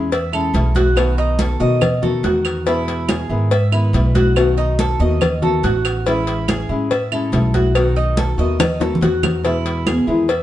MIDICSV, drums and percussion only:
0, 0, Header, 1, 2, 480
1, 0, Start_track
1, 0, Key_signature, 4, "major"
1, 0, Tempo, 424028
1, 1098, Time_signature, 4, 2, 24, 8
1, 11806, End_track
2, 0, Start_track
2, 0, Title_t, "Drums"
2, 139, Note_on_c, 9, 63, 36
2, 140, Note_on_c, 9, 56, 118
2, 252, Note_off_c, 9, 63, 0
2, 253, Note_off_c, 9, 56, 0
2, 377, Note_on_c, 9, 75, 65
2, 379, Note_on_c, 9, 63, 35
2, 490, Note_off_c, 9, 75, 0
2, 492, Note_off_c, 9, 63, 0
2, 615, Note_on_c, 9, 63, 85
2, 619, Note_on_c, 9, 56, 68
2, 728, Note_off_c, 9, 63, 0
2, 732, Note_off_c, 9, 56, 0
2, 847, Note_on_c, 9, 63, 82
2, 859, Note_on_c, 9, 56, 67
2, 961, Note_off_c, 9, 63, 0
2, 972, Note_off_c, 9, 56, 0
2, 1096, Note_on_c, 9, 63, 35
2, 1096, Note_on_c, 9, 75, 62
2, 1101, Note_on_c, 9, 56, 104
2, 1209, Note_off_c, 9, 63, 0
2, 1209, Note_off_c, 9, 75, 0
2, 1214, Note_off_c, 9, 56, 0
2, 1332, Note_on_c, 9, 63, 36
2, 1445, Note_off_c, 9, 63, 0
2, 1571, Note_on_c, 9, 63, 93
2, 1582, Note_on_c, 9, 56, 75
2, 1684, Note_off_c, 9, 63, 0
2, 1695, Note_off_c, 9, 56, 0
2, 2053, Note_on_c, 9, 75, 60
2, 2058, Note_on_c, 9, 56, 112
2, 2058, Note_on_c, 9, 63, 33
2, 2058, Note_on_c, 9, 64, 80
2, 2166, Note_off_c, 9, 75, 0
2, 2171, Note_off_c, 9, 56, 0
2, 2171, Note_off_c, 9, 63, 0
2, 2171, Note_off_c, 9, 64, 0
2, 2296, Note_on_c, 9, 63, 36
2, 2296, Note_on_c, 9, 64, 72
2, 2409, Note_off_c, 9, 63, 0
2, 2409, Note_off_c, 9, 64, 0
2, 2536, Note_on_c, 9, 56, 63
2, 2536, Note_on_c, 9, 63, 89
2, 2649, Note_off_c, 9, 63, 0
2, 2650, Note_off_c, 9, 56, 0
2, 2771, Note_on_c, 9, 75, 75
2, 2777, Note_on_c, 9, 63, 33
2, 2778, Note_on_c, 9, 56, 66
2, 2884, Note_off_c, 9, 75, 0
2, 2890, Note_off_c, 9, 63, 0
2, 2891, Note_off_c, 9, 56, 0
2, 3018, Note_on_c, 9, 63, 35
2, 3019, Note_on_c, 9, 56, 99
2, 3131, Note_off_c, 9, 63, 0
2, 3132, Note_off_c, 9, 56, 0
2, 3258, Note_on_c, 9, 63, 39
2, 3261, Note_on_c, 9, 56, 67
2, 3371, Note_off_c, 9, 63, 0
2, 3375, Note_off_c, 9, 56, 0
2, 3493, Note_on_c, 9, 75, 61
2, 3496, Note_on_c, 9, 63, 99
2, 3502, Note_on_c, 9, 56, 74
2, 3606, Note_off_c, 9, 75, 0
2, 3609, Note_off_c, 9, 63, 0
2, 3616, Note_off_c, 9, 56, 0
2, 3741, Note_on_c, 9, 63, 34
2, 3854, Note_off_c, 9, 63, 0
2, 3976, Note_on_c, 9, 56, 108
2, 3982, Note_on_c, 9, 63, 33
2, 4090, Note_off_c, 9, 56, 0
2, 4095, Note_off_c, 9, 63, 0
2, 4216, Note_on_c, 9, 75, 68
2, 4221, Note_on_c, 9, 63, 35
2, 4329, Note_off_c, 9, 75, 0
2, 4334, Note_off_c, 9, 63, 0
2, 4461, Note_on_c, 9, 63, 90
2, 4464, Note_on_c, 9, 56, 69
2, 4574, Note_off_c, 9, 63, 0
2, 4577, Note_off_c, 9, 56, 0
2, 4699, Note_on_c, 9, 63, 89
2, 4701, Note_on_c, 9, 56, 65
2, 4812, Note_off_c, 9, 63, 0
2, 4815, Note_off_c, 9, 56, 0
2, 4938, Note_on_c, 9, 75, 63
2, 4940, Note_on_c, 9, 63, 34
2, 4944, Note_on_c, 9, 56, 99
2, 5051, Note_off_c, 9, 75, 0
2, 5053, Note_off_c, 9, 63, 0
2, 5057, Note_off_c, 9, 56, 0
2, 5177, Note_on_c, 9, 63, 39
2, 5290, Note_off_c, 9, 63, 0
2, 5421, Note_on_c, 9, 63, 90
2, 5427, Note_on_c, 9, 56, 71
2, 5534, Note_off_c, 9, 63, 0
2, 5540, Note_off_c, 9, 56, 0
2, 5898, Note_on_c, 9, 75, 59
2, 5901, Note_on_c, 9, 63, 36
2, 5901, Note_on_c, 9, 64, 81
2, 5905, Note_on_c, 9, 56, 110
2, 6011, Note_off_c, 9, 75, 0
2, 6014, Note_off_c, 9, 63, 0
2, 6014, Note_off_c, 9, 64, 0
2, 6018, Note_off_c, 9, 56, 0
2, 6144, Note_on_c, 9, 63, 35
2, 6144, Note_on_c, 9, 64, 73
2, 6257, Note_off_c, 9, 63, 0
2, 6257, Note_off_c, 9, 64, 0
2, 6378, Note_on_c, 9, 63, 85
2, 6384, Note_on_c, 9, 56, 69
2, 6492, Note_off_c, 9, 63, 0
2, 6497, Note_off_c, 9, 56, 0
2, 6620, Note_on_c, 9, 75, 73
2, 6626, Note_on_c, 9, 56, 68
2, 6733, Note_off_c, 9, 75, 0
2, 6740, Note_off_c, 9, 56, 0
2, 6859, Note_on_c, 9, 63, 35
2, 6866, Note_on_c, 9, 56, 101
2, 6973, Note_off_c, 9, 63, 0
2, 6979, Note_off_c, 9, 56, 0
2, 7100, Note_on_c, 9, 56, 73
2, 7101, Note_on_c, 9, 63, 36
2, 7213, Note_off_c, 9, 56, 0
2, 7214, Note_off_c, 9, 63, 0
2, 7338, Note_on_c, 9, 75, 66
2, 7342, Note_on_c, 9, 56, 76
2, 7343, Note_on_c, 9, 63, 90
2, 7451, Note_off_c, 9, 75, 0
2, 7455, Note_off_c, 9, 56, 0
2, 7456, Note_off_c, 9, 63, 0
2, 7583, Note_on_c, 9, 63, 33
2, 7697, Note_off_c, 9, 63, 0
2, 7821, Note_on_c, 9, 56, 111
2, 7824, Note_on_c, 9, 63, 34
2, 7935, Note_off_c, 9, 56, 0
2, 7937, Note_off_c, 9, 63, 0
2, 8059, Note_on_c, 9, 75, 68
2, 8062, Note_on_c, 9, 63, 37
2, 8172, Note_off_c, 9, 75, 0
2, 8175, Note_off_c, 9, 63, 0
2, 8297, Note_on_c, 9, 56, 68
2, 8300, Note_on_c, 9, 63, 84
2, 8410, Note_off_c, 9, 56, 0
2, 8414, Note_off_c, 9, 63, 0
2, 8536, Note_on_c, 9, 63, 81
2, 8537, Note_on_c, 9, 56, 62
2, 8650, Note_off_c, 9, 56, 0
2, 8650, Note_off_c, 9, 63, 0
2, 8776, Note_on_c, 9, 56, 105
2, 8778, Note_on_c, 9, 75, 59
2, 8779, Note_on_c, 9, 63, 34
2, 8889, Note_off_c, 9, 56, 0
2, 8891, Note_off_c, 9, 75, 0
2, 8892, Note_off_c, 9, 63, 0
2, 9011, Note_on_c, 9, 63, 37
2, 9124, Note_off_c, 9, 63, 0
2, 9251, Note_on_c, 9, 63, 91
2, 9253, Note_on_c, 9, 56, 73
2, 9364, Note_off_c, 9, 63, 0
2, 9366, Note_off_c, 9, 56, 0
2, 9733, Note_on_c, 9, 63, 35
2, 9733, Note_on_c, 9, 64, 86
2, 9734, Note_on_c, 9, 75, 61
2, 9735, Note_on_c, 9, 56, 117
2, 9735, Note_on_c, 9, 60, 96
2, 9846, Note_off_c, 9, 63, 0
2, 9846, Note_off_c, 9, 64, 0
2, 9847, Note_off_c, 9, 75, 0
2, 9848, Note_off_c, 9, 56, 0
2, 9848, Note_off_c, 9, 60, 0
2, 9969, Note_on_c, 9, 63, 70
2, 9974, Note_on_c, 9, 60, 81
2, 10082, Note_off_c, 9, 63, 0
2, 10087, Note_off_c, 9, 60, 0
2, 10132, Note_on_c, 9, 64, 81
2, 10216, Note_on_c, 9, 56, 68
2, 10216, Note_on_c, 9, 61, 72
2, 10246, Note_off_c, 9, 64, 0
2, 10329, Note_off_c, 9, 56, 0
2, 10329, Note_off_c, 9, 61, 0
2, 10449, Note_on_c, 9, 64, 82
2, 10452, Note_on_c, 9, 75, 75
2, 10454, Note_on_c, 9, 56, 64
2, 10454, Note_on_c, 9, 61, 76
2, 10562, Note_off_c, 9, 64, 0
2, 10566, Note_off_c, 9, 75, 0
2, 10567, Note_off_c, 9, 56, 0
2, 10567, Note_off_c, 9, 61, 0
2, 10693, Note_on_c, 9, 56, 97
2, 10694, Note_on_c, 9, 63, 32
2, 10806, Note_off_c, 9, 56, 0
2, 10807, Note_off_c, 9, 63, 0
2, 10930, Note_on_c, 9, 63, 37
2, 10932, Note_on_c, 9, 56, 77
2, 11043, Note_off_c, 9, 63, 0
2, 11045, Note_off_c, 9, 56, 0
2, 11168, Note_on_c, 9, 63, 89
2, 11169, Note_on_c, 9, 56, 68
2, 11171, Note_on_c, 9, 75, 71
2, 11281, Note_off_c, 9, 63, 0
2, 11282, Note_off_c, 9, 56, 0
2, 11284, Note_off_c, 9, 75, 0
2, 11408, Note_on_c, 9, 63, 33
2, 11522, Note_off_c, 9, 63, 0
2, 11648, Note_on_c, 9, 56, 108
2, 11649, Note_on_c, 9, 63, 32
2, 11761, Note_off_c, 9, 56, 0
2, 11762, Note_off_c, 9, 63, 0
2, 11806, End_track
0, 0, End_of_file